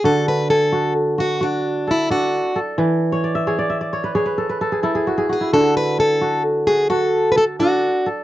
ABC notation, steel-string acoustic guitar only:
X:1
M:12/8
L:1/16
Q:3/8=87
K:Dlyd
V:1 name="Steel-string acoustic guitar"
A2 B2 A4 z2 F2 D4 E2 F4- F/2 z3/2 | z16 z6 G2 | A2 B2 A4 z2 G2 A3- A/2 B/2 A2 F4- F/2 z3/2 |]